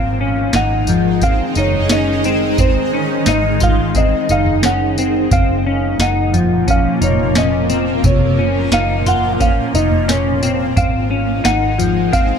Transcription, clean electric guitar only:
0.00 0.20 C4 medium
0.21 0.54 C#4 medium
0.55 0.88 D#4 medium
0.89 1.23 F3 medium
1.23 1.57 C4 medium
1.57 1.90 D#4 medium
1.91 2.25 C#4 medium
2.25 2.58 C4 medium
2.59 2.93 C4 medium
2.94 3.27 C#4 medium
3.27 3.61 D#4 medium
3.61 3.95 F4 medium
3.96 4.30 C4 medium
4.30 4.64 D#4 medium
4.64 4.98 C#4 medium
4.99 5.31 C4 medium
5.33 5.66 C4 medium
5.67 6.00 C#4 medium
6.00 6.34 D#4 medium
6.34 6.68 F3 medium
6.68 7.01 C#4 medium
7.01 7.36 D#4 medium
7.36 7.69 C#4 medium
7.70 8.04 C4 medium
8.04 8.38 C3 medium
8.39 8.72 C#4 medium
8.72 9.06 D#4 medium
9.07 9.41 F4 medium
9.40 9.74 C#4 medium
9.75 10.08 D#4 medium
10.08 10.42 C#4 medium
10.43 10.75 C4 medium
10.77 11.10 C4 medium
11.11 11.44 C#4 medium
11.44 11.79 D#4 medium
11.78 12.13 F3 medium
12.13 12.39 C4 medium

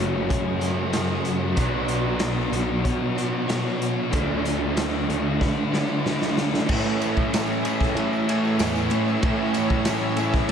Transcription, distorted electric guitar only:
0.00 0.93 F#2 medium
0.00 0.93 C#3 medium
0.00 0.92 F#3 loud
0.94 1.56 F#2 medium
0.94 1.56 C#3 medium
0.94 1.57 F#3 medium
1.56 2.51 B2 medium
1.56 2.52 F#3 medium
1.56 2.51 B3 loud
2.52 3.48 F#3 medium
2.52 3.47 B3 medium
2.56 3.46 B2 medium
3.48 4.11 B2 medium
3.48 4.12 F#3 medium
3.52 4.13 B3 medium
4.12 5.07 D3 medium
4.12 5.08 A3 medium
4.16 5.07 D4 medium
5.09 6.04 D3 medium
5.09 6.04 A3 medium
5.09 6.03 D4 medium
6.06 6.67 D3 medium
6.06 6.68 A3 medium
6.06 6.69 D4 medium
6.68 7.32 A2 medium
6.68 7.04 E3 medium
6.68 7.00 A3 medium
7.01 7.34 E3 medium
7.01 7.35 A3 medium
7.32 7.95 A2 medium
7.32 7.66 E3 medium
7.32 7.62 A3 medium
7.63 7.97 E3 medium
7.63 7.98 A3 medium
7.95 8.57 A2 loud
7.95 8.30 E3 medium
7.95 8.27 A3 loud
8.27 8.60 E3 medium
8.27 8.62 A3 medium
8.58 9.20 A2 medium
8.58 8.93 E3 medium
8.58 8.90 A3 medium
8.90 9.23 E3 medium
8.90 9.24 A3 medium
9.21 9.85 A2 medium
9.21 9.56 E3 loud
9.21 9.52 A3 loud
9.53 9.87 E3 medium
9.53 9.88 A3 medium
9.86 10.47 A2 medium
9.86 10.20 E3 medium
9.86 10.15 A3 medium
10.16 10.52 A3 medium
10.20 10.49 E3 medium
10.49 10.52 A2 loud

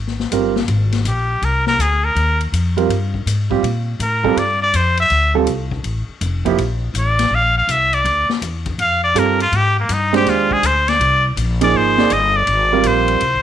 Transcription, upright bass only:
0.00 0.30 G#1 medium
0.31 0.67 G1 medium
0.68 1.04 G#1 medium
1.05 1.41 A#1 medium
1.42 1.78 C2 medium
1.78 2.14 D2 medium
2.15 2.51 D#2 medium
2.52 2.88 F2 medium
2.89 3.25 G2 medium
3.26 3.62 G#2 medium
3.63 3.99 A#2 medium
4.00 4.35 A2 medium
4.36 4.72 G2 medium
4.74 5.09 F2 medium
5.10 5.46 D2 medium
5.47 5.83 C2 medium
5.84 6.06 A1 medium
6.08 muted upright bass stroke soft
6.21 6.57 F1 medium
6.58 6.93 A#1 medium
6.94 7.30 A1 medium
7.31 7.67 A#1 medium
7.67 8.04 C2 medium
8.05 8.27 D2 medium
8.42 8.77 E2 medium
8.78 9.14 F2 medium
9.15 9.51 G2 medium
9.52 9.88 G#2 medium
9.89 10.25 G2 medium
10.26 10.62 D#2 medium
10.63 10.98 D2 medium
11.00 11.35 C2 loud
11.36 11.72 A#1 medium
11.74 12.09 G#1 medium
12.11 12.46 G1 medium
12.47 12.83 G#1 medium
12.84 13.19 A#1 medium
13.21 13.35 C2 medium
13.33 13.42 G#1 soft

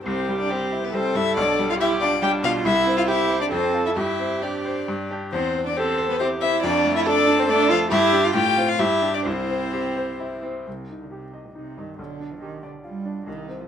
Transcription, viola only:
0.04 0.89 G4 medium
0.93 1.78 A4 loud
1.78 2.20 G4 loud
2.22 2.64 D4 medium
2.65 3.09 E4 loud
3.08 3.50 G4 loud
3.51 3.98 A4 loud
3.96 5.10 G4 medium
5.77 6.22 A4 loud
6.20 6.62 G4 medium
6.63 7.08 F4 loud
7.07 7.48 A4 loud
7.49 7.91 A4 loud
7.91 8.34 G4 loud
8.35 8.81 F4 loud
8.79 9.28 G4 loud
9.26 10.43 E4 medium

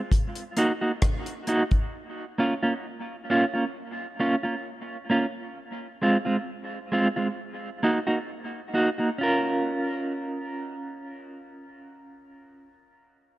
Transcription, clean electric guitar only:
0.57 0.71 A#3 medium
0.57 0.72 D#4 medium
0.57 0.72 F#4 loud
0.81 0.91 A#3 soft
0.81 0.91 D#4 medium
0.81 0.91 F#4 medium
1.47 1.62 A#3 medium
1.47 1.62 D#4 medium
1.47 1.62 F#4 loud
2.38 2.53 A#3 medium
2.38 2.53 C#4 medium
2.38 2.53 F4 medium
2.63 2.73 A#3 medium
2.63 2.73 C#4 medium
2.63 2.72 F4 medium
3.30 3.44 A#3 medium
3.30 3.44 C#4 medium
3.30 3.44 F4 loud
3.54 3.64 A#3 soft
3.54 3.64 C#4 medium
3.54 3.63 F4 medium
4.20 4.34 A#3 medium
4.20 4.34 C#4 medium
4.20 4.35 F4 medium
4.43 4.54 A#3 soft
4.43 4.54 C#4 soft
4.43 4.54 F4 medium
5.10 5.25 A#3 medium
5.10 5.25 C#4 medium
5.10 5.25 F4 medium
6.02 6.16 G#3 medium
6.02 6.16 C4 medium
6.02 6.17 F4 medium
6.25 6.36 G#3 medium
6.25 6.36 C4 medium
6.25 6.35 F4 medium
6.92 7.07 G#3 medium
6.92 7.07 C4 medium
6.92 7.07 F4 medium
7.16 7.27 G#3 medium
7.16 7.27 C4 medium
7.16 7.26 F4 medium
7.83 7.98 A#3 medium
7.83 7.98 D#4 medium
7.83 7.98 F#4 medium
8.07 8.18 A#3 soft
8.07 8.17 D#4 medium
8.07 8.17 F#4 medium
8.74 8.88 A#3 medium
8.74 8.89 D#4 medium
8.74 8.89 F#4 medium
8.98 9.09 A#3 soft
8.98 9.09 D#4 soft
8.98 9.08 F#4 medium
9.18 12.68 C#4 medium
9.18 12.71 F4 medium
9.23 12.73 A#4 medium

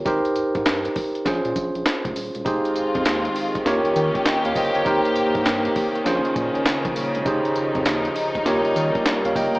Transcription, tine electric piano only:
0.05 1.23 D#4 medium
0.05 1.24 G4 medium
0.05 1.24 A#4 medium
0.05 1.24 C5 medium
1.25 2.43 C#4 medium
1.25 2.44 F4 medium
1.25 2.44 G#4 medium
1.25 2.44 C5 medium
2.45 3.63 D#4 medium
2.45 3.63 G4 medium
2.45 3.64 G#4 medium
2.45 3.64 C5 medium
3.65 4.83 F4 medium
3.65 4.83 G4 medium
3.65 4.25 A#4 medium
3.65 4.25 C#5 medium
4.26 4.45 D#5 medium
4.26 4.44 G5 medium
4.46 4.56 C#5 medium
4.46 4.56 F5 medium
4.56 4.75 C5 medium
4.56 4.74 D#5 medium
4.76 4.85 A#4 soft
4.76 5.04 C#5 medium
4.85 6.03 D#4 medium
4.85 6.03 G4 medium
4.85 6.04 A#4 medium
4.85 6.04 C5 medium
6.05 7.23 C#4 medium
6.05 7.23 F4 medium
6.05 7.24 G#4 medium
6.05 7.24 C5 medium
7.25 8.43 D#4 medium
7.25 8.43 G4 medium
7.25 8.44 G#4 medium
7.25 8.44 C5 medium
8.45 9.59 F4 medium
8.45 9.59 G4 medium
8.45 9.59 A#4 medium
8.45 8.76 C#5 medium
9.26 9.36 C#5 medium
9.26 9.36 F5 medium
9.36 9.55 D#5 medium
9.36 9.54 G5 medium
9.55 9.59 G5 medium
9.55 9.59 A#5 medium

